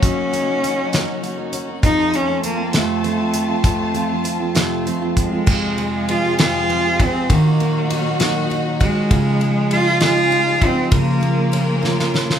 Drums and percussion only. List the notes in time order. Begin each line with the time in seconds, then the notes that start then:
0.03 kick, closed hi-hat
0.34 closed hi-hat
0.64 closed hi-hat
0.93 snare, closed hi-hat
1.24 closed hi-hat
1.53 closed hi-hat
1.83 kick, closed hi-hat
2.14 closed hi-hat
2.44 closed hi-hat
2.73 snare, closed hi-hat
3.04 closed hi-hat
3.34 closed hi-hat
3.64 kick, closed hi-hat
3.95 closed hi-hat
4.25 closed hi-hat
4.55 snare, closed hi-hat
4.87 closed hi-hat
5.17 kick, closed hi-hat
5.47 kick, crash
5.78 ride
6.09 ride
6.39 snare, ride
6.70 ride
7.00 kick, ride
7.30 kick, ride
7.60 ride
7.90 ride
8.20 snare, ride
8.51 ride
8.81 kick, ride
9.11 kick, ride
9.41 ride
9.71 ride
10.00 snare, ride
10.32 ride
10.62 kick, ride
10.92 kick, ride
11.23 ride
11.53 ride
11.85 snare
12.00 snare
12.15 snare
12.30 snare